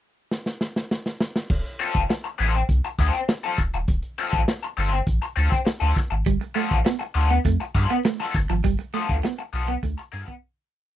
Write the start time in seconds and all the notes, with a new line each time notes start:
0.31 snare
0.46 snare
0.61 snare
0.76 snare
0.91 snare
1.06 snare
1.21 snare
1.36 snare
1.50 D1, kick, crash
1.65 closed hi-hat
1.80 C4 F4 A4, closed hi-hat
1.95 F1, kick, closed hi-hat
2.10 muted overdriven electric guitar stroke, snare
2.24 muted overdriven electric guitar stroke, closed hi-hat
2.39 A1 C4 F4 A4, open hi-hat
2.54 muted overdriven electric guitar stroke, closed hi-hat
2.69 C2, kick, closed hi-hat
2.84 muted overdriven electric guitar stroke, closed hi-hat
2.99 D2 C4 F4 A4, kick, closed hi-hat
3.14 muted overdriven electric guitar stroke, closed hi-hat
3.29 muted overdriven electric guitar stroke, snare
3.44 C4 F4 A4, closed hi-hat
3.58 D1, muted overdriven electric guitar stroke, kick, closed hi-hat
3.73 D#1, muted overdriven electric guitar stroke, closed hi-hat
3.88 D1, kick, closed hi-hat
4.02 closed hi-hat
4.18 C4 F4 A4, closed hi-hat
4.33 A1, kick, closed hi-hat
4.48 muted overdriven electric guitar stroke, snare
4.63 muted overdriven electric guitar stroke, closed hi-hat
4.77 G1 C4 F4 A4, open hi-hat
4.92 muted overdriven electric guitar stroke, closed hi-hat
5.07 A1, kick, closed hi-hat
5.22 muted overdriven electric guitar stroke, closed hi-hat
5.36 D2 C4 F4 A4, closed hi-hat
5.51 muted overdriven electric guitar stroke, kick, closed hi-hat
5.65 muted overdriven electric guitar stroke, snare
5.80 D2 C4 F4 A4, closed hi-hat
5.96 muted overdriven electric guitar stroke, kick, snare, closed hi-hat
6.11 G#1, muted overdriven electric guitar stroke, closed hi-hat
6.26 G1 G3, kick, closed hi-hat
6.41 muted clean electric guitar stroke, closed hi-hat
6.55 A3 B3 F4 A4, closed hi-hat
6.71 A1, kick, closed hi-hat
6.85 B3, muted overdriven electric guitar stroke, snare
6.99 muted overdriven electric guitar stroke, muted clean electric guitar stroke, closed hi-hat
7.15 D2 B3 F4 A4, open hi-hat
7.30 B3, muted overdriven electric guitar stroke, closed hi-hat
7.45 F2 A3, kick, closed hi-hat
7.60 muted overdriven electric guitar stroke, closed hi-hat
7.75 G2 B3 F4 A4, muted clean electric guitar stroke, kick, closed hi-hat
7.90 B3, muted overdriven electric guitar stroke, closed hi-hat
8.05 A3, muted overdriven electric guitar stroke, snare
8.20 B3 F4 A4, muted clean electric guitar stroke, closed hi-hat
8.34 G1, muted overdriven electric guitar stroke, kick, snare, closed hi-hat
8.50 G#1 F3, muted overdriven electric guitar stroke, closed hi-hat
8.64 G1 G3, kick, closed hi-hat
8.79 muted clean electric guitar stroke, closed hi-hat
8.94 A3 B3 F4 A4, closed hi-hat
9.09 D2, kick, closed hi-hat
9.23 B3, muted overdriven electric guitar stroke, snare
9.39 muted clean electric guitar stroke, muted overdriven electric guitar stroke, closed hi-hat
9.53 B1 B3 F4 A4, open hi-hat
9.68 B3, muted overdriven electric guitar stroke, closed hi-hat
9.83 D2 A3, kick, closed hi-hat
9.98 muted overdriven electric guitar stroke, closed hi-hat
10.12 G2 B3 F4 A4, muted clean electric guitar stroke, closed hi-hat
10.27 B3, muted overdriven electric guitar stroke, kick, closed hi-hat